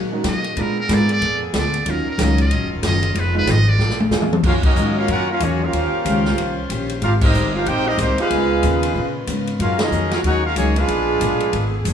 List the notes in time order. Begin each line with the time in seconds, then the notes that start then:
Already playing: A#2 D#3 F#3 G#3 A#3 D#4 F#4 G#4
0.12 G#3 C#4 D#4 F#4 A#4
0.24 B2 F#3 A#3 D#4 G#4, kick, snare, hi-hat pedal, ride
0.28 D#5
0.44 ride
0.55 A#2 D3 G#3 B3 D4 F4 G#4 A#4, kick, ride
0.61 A#4
0.80 A#4
0.88 G#2 A#2 G#3 B3 D4 F4 A#4, kick, snare, hi-hat pedal, ride
0.93 D5
1.09 D5, ride
1.21 F2 A#2 G#3 B3 D4, kick, ride
1.53 D2 A#2 G#3 B3 D4, kick, snare, hi-hat pedal, ride
1.58 D5
1.74 ride
1.85 D#2 D#3 F#3 C#4 D#4 F4 A#4, kick, ride
1.90 A#4
2.06 A#4, muted upright bass stroke
2.18 C#2 D#3 F#3 C#4 D#4 F4 A#4, kick, snare, hi-hat pedal, ride
2.23 D#5
2.38 D#5, ride
2.50 A#1 D#3 F#3 C#4 F4, kick, ride
2.61 F#1
2.72 D#1
2.82 F#1 D#3 F#3 C#4 F4, kick, snare, hi-hat pedal, ride
2.87 D#5
3.03 ride
3.14 F1 F3 G#3 B3 D#4 G#4, kick, ride
3.19 B4
3.35 G#3 B3 D#4 F4 B4
3.47 G#1 F3 B3 D#4 G#4 D#5, kick, snare, hi-hat pedal, ride
3.69 D5
3.79 A#1 A#2 D3 G#3 A#3 D4 F4, snare
3.89 snare
4.00 high tom
4.11 F2 A#2 G#3 A#3 D4 F4 G#4, snare, hi-hat pedal
4.22 mid tom
4.33 mid tom
4.43 F#2 D#3 F#3 A#3 C#4 F4 F#4 A#4 F5, kick, crash
4.63 F#3 A#3 C#4 D#4 F#4 A#4 D#5, kick, crash
4.76 G#2 D#3 F#3 C#4 F4, hi-hat pedal
4.98 A#3 C#4 F4 F#4 A#4 F5
5.08 F#2 D#3 F#3 A#3 C#4 F4 F#4, kick, ride
5.12 C#4 F4 A#4 F#5
5.30 A#3 C#4 F4 F#4 A#4 F5
5.40 E2 D#3 F#3 A#3 C#4 F4, kick, hi-hat pedal, ride
5.44 A#3 F4 F#4 C#5
5.63 A#3 C#4 F4 G4 A#4 F5
5.73 D#2 D#3 G3 C#4 F4 G4 C5, kick, ride
5.93 muted upright bass stroke
6.05 C#2 D#3 C#4 G4 C5, kick, hi-hat pedal, ride
6.25 snare
6.37 C2 D#3 C#4 G4 C5, kick, ride
6.70 A#1 D#3 C#4 G4 C5, kick, hi-hat pedal, ride
6.89 ride
7.01 G#1 C3 G3 G#3 C4 D4 F4 G4 A#4 F5, kick, ride
7.21 G3 C4 D#4 G4 A#4 D#5, kick, crash
7.33 G1 G#3 C4 G4 A#4, hi-hat pedal
7.54 D4 F4 G4 A#4 F5
7.66 A#1 G#3 C4 D#4 G4 A#4 C5 G5, kick, ride
7.86 G3 C4 D#4 G4 A#4 D#5
7.98 C2 D#3 G3 G#3 A#3 C4 D#4 G4 A#4 C5, kick, hi-hat pedal, ride
8.18 G#3 B3 D#4 F4 G#4 B4 F5, muted upright bass stroke, ride
8.30 C#2 C#3 D#3 B3 F4 A#4 B4, kick, ride
8.63 D#2 C#3 B3 F4 A#4, kick, hi-hat pedal, ride
8.83 ride
8.95 A#2 C#3 B3 F4 A#4, kick
9.27 G#2 C#3 B3 F4 A#4, kick, hi-hat pedal, ride
9.47 ride
9.59 F#2 F#3 G#3 A#3 C#4 D#4 F4 F#4 G#4 A#4 F5, kick, ride
9.79 D#3 A#3 C#4 D#4 G#4 A#4 D#5, snare, ride
9.91 F2 F#3 A#3 D#4 G#4, hi-hat pedal
10.11 C#4 F4 F#4 A#4 F5, snare, ride
10.24 D#2 F#3 A#3 C#4 D#4 F#4 G#4 A#4 C#5 F#5, kick, ride
10.45 C#4 F4 F#4 A#4 F5
10.56 C#2 D#3 F#3 A#3 C#4 D#4 G#4 C#5, kick, hi-hat pedal, ride
10.76 G#3 D4 F4 G#4 B4 F5, ride
10.88 A#1 A#2 D3 G#3 B3 D4 G#4, kick, ride
11.20 B1 A#2 G#3 B3 D4, kick, hi-hat pedal, ride
11.40 ride
11.53 G#1 A#2 G#3 B3 D4, kick, ride
11.85 F1 A#2 G#3 B3 D4, kick, hi-hat pedal, ride